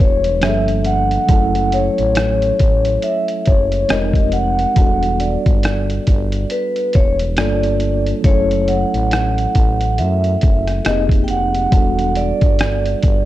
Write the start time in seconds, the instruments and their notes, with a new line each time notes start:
Already playing: tine electric piano G3 B3 D4 F#4 A4
0.00 fm bass E1, vibraphone C#5, kick
0.24 closed hi-hat
0.40 fm bass G1, tine electric piano F3 G3 A#3 D4 G#4, vibraphone E5, cross-stick, closed hi-hat
0.49 tine electric piano A4
0.68 closed hi-hat
0.84 vibraphone F#5, closed hi-hat
1.11 closed hi-hat
1.26 fm bass F#1, tine electric piano F#3 A3 C#4, kick, closed hi-hat
1.31 tine electric piano E4 A4
1.55 closed hi-hat
1.72 vibraphone C#5, closed hi-hat
1.98 fm bass A1, closed hi-hat
2.15 cross-stick, closed hi-hat
2.42 closed hi-hat
2.59 fm bass A1, kick, closed hi-hat
2.85 closed hi-hat
3.02 vibraphone E5, closed hi-hat
3.28 closed hi-hat
3.46 fm bass F#1, vibraphone C#5, kick, closed hi-hat
3.72 closed hi-hat
3.88 fm bass F1, tine electric piano G#3 C4 D#4 G4 A#4, cross-stick, closed hi-hat
4.13 kick, closed hi-hat
4.32 vibraphone F#5, closed hi-hat
4.59 closed hi-hat
4.74 fm bass E1, tine electric piano G3 B3 D4, kick, closed hi-hat
4.79 tine electric piano F#4 A4
5.03 closed hi-hat
5.20 vibraphone D5, closed hi-hat
5.46 fm bass G1, kick, closed hi-hat
5.63 cross-stick, closed hi-hat
5.90 closed hi-hat
6.07 fm bass G1, kick, closed hi-hat
6.32 closed hi-hat
6.50 vibraphone B4, closed hi-hat
6.76 closed hi-hat
6.93 fm bass E1, vibraphone C#5, kick, closed hi-hat
7.19 closed hi-hat
7.37 fm bass G1, tine electric piano G3 A#3 D4 F4 A4, vibraphone D5, cross-stick, closed hi-hat
7.63 closed hi-hat
7.80 closed hi-hat
8.06 closed hi-hat
8.21 tine electric piano F#3 A3 C#4, kick, closed hi-hat
8.25 fm bass F#1, tine electric piano E4 A4, vibraphone C#5
8.51 closed hi-hat
8.68 vibraphone F#5, closed hi-hat
8.94 fm bass A1, closed hi-hat
9.11 cross-stick, closed hi-hat
9.38 closed hi-hat
9.55 fm bass A1, kick, closed hi-hat
9.81 closed hi-hat
9.98 fm bass F#2, vibraphone E5, closed hi-hat
10.24 closed hi-hat
10.41 fm bass F#1, kick, closed hi-hat
10.67 cross-stick, closed hi-hat
10.85 fm bass F1, tine electric piano A#3 C4 D#4 G4 G#4, vibraphone D#5, cross-stick, closed hi-hat
11.09 kick, closed hi-hat
11.24 vibraphone G5, closed hi-hat
11.30 fm bass F1, vibraphone F#5
11.55 closed hi-hat
11.70 fm bass E1, tine electric piano G3 B3 D4, kick, closed hi-hat
11.75 tine electric piano F#4 A4
11.99 closed hi-hat
12.15 vibraphone D5, closed hi-hat
12.41 fm bass G1, kick, closed hi-hat
12.59 cross-stick, closed hi-hat
12.86 closed hi-hat
13.03 fm bass G1, kick, closed hi-hat